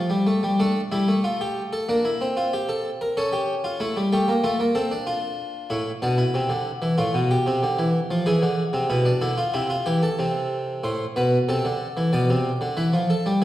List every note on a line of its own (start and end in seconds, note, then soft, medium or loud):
0.00 0.21 D5 medium
0.10 0.25 G3 medium
0.27 0.42 A3 medium
0.43 0.58 G3 medium
0.59 0.80 A3 medium
0.59 0.79 D4 medium
0.92 1.07 G3 medium
0.92 1.12 E4 medium
1.08 1.86 A3 medium
1.24 1.40 F4 medium
1.41 1.61 G4 medium
1.73 1.88 A4 medium
1.89 2.08 A#3 medium
1.89 2.04 D4 medium
2.05 2.24 E4 medium
2.21 3.14 C4 medium
2.37 2.52 F4 medium
2.53 2.68 G4 medium
2.69 2.89 A4 medium
3.01 3.16 A#4 medium
3.17 3.79 C#4 medium
3.17 3.32 A4 medium
3.33 3.52 G4 medium
3.64 3.80 F4 medium
3.80 3.96 A3 medium
3.80 4.00 E4 medium
3.97 4.12 G3 medium
4.13 4.28 A3 medium
4.13 4.32 G4 medium
4.28 4.43 A#3 medium
4.44 4.59 A3 medium
4.44 4.63 F4 medium
4.60 4.75 A#3 medium
4.75 4.91 C4 medium
4.75 4.95 A4 medium
4.91 5.68 D4 medium
5.07 5.68 F4 medium
5.70 5.90 A2 medium
5.70 5.90 E4 medium
6.02 6.22 B2 loud
6.02 6.18 D4 medium
6.18 6.96 E4 medium
6.34 6.50 C3 medium
6.49 6.69 D3 medium
6.82 6.97 E3 medium
6.98 7.13 A2 medium
6.98 7.18 F4 medium
7.14 7.34 B2 medium
7.31 8.23 G4 medium
7.46 7.62 C3 medium
7.63 7.78 D3 loud
7.79 7.98 E3 medium
8.11 8.26 F3 medium
8.26 8.41 E3 loud
8.26 8.88 G#4 medium
8.42 8.62 D3 medium
8.73 8.89 C3 loud
8.90 9.10 B2 medium
8.90 9.05 E4 medium
9.05 9.21 D4 medium
9.21 9.42 D3 loud
9.21 9.37 E4 medium
9.38 9.53 F4 medium
9.54 9.74 C3 medium
9.54 9.69 E4 medium
9.70 9.86 F4 medium
9.86 10.06 E3 medium
9.86 10.02 G4 medium
10.03 10.82 A4 medium
10.19 10.82 C3 medium
10.84 11.04 A2 medium
10.84 11.04 C5 medium
11.16 11.36 B2 medium
11.16 11.36 B4 medium
11.49 11.65 C3 medium
11.49 12.11 A4 medium
11.65 11.85 D3 medium
11.97 12.13 E3 medium
12.13 12.29 B2 medium
12.13 12.75 D5 medium
12.29 12.49 C3 medium
12.61 12.77 D3 medium
12.77 12.93 E3 medium
12.77 12.97 B4 medium
12.93 13.13 F3 medium
13.10 13.29 A4 medium
13.26 13.41 G3 medium